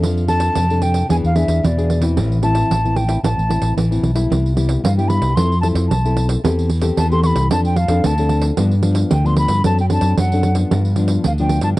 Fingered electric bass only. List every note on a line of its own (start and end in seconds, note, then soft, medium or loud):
0.03 0.48 F2 loud
0.56 1.02 F2 medium
1.10 1.21 E2 medium
1.24 1.46 E2 medium
1.48 1.60 E2 medium
1.64 2.19 E2 medium
2.17 2.62 A1 loud
2.71 3.16 A1 medium
3.23 3.35 A1 medium
3.38 3.60 A1 medium
3.62 3.76 A1 medium
3.77 4.01 A1 medium
4.02 4.27 B1 medium
4.31 4.76 C2 medium
4.84 5.18 G2 medium
5.21 5.34 C2 medium
5.37 5.71 F2 medium
5.75 5.87 F2 loud
5.90 6.36 B1 medium
6.44 6.89 E2 medium
6.97 7.31 E2 medium
7.35 7.48 C2 medium
7.51 7.85 F2 medium
7.88 8.01 F2 medium
8.04 8.50 D2 loud
8.57 9.03 G2 loud
9.11 9.45 D2 medium
9.48 9.61 G2 medium
9.64 9.98 F#2 medium
10.02 10.14 F#2 medium
10.18 10.63 F#2 medium
10.71 11.17 G2 loud
11.25 11.59 D2 medium
11.62 11.75 G2 medium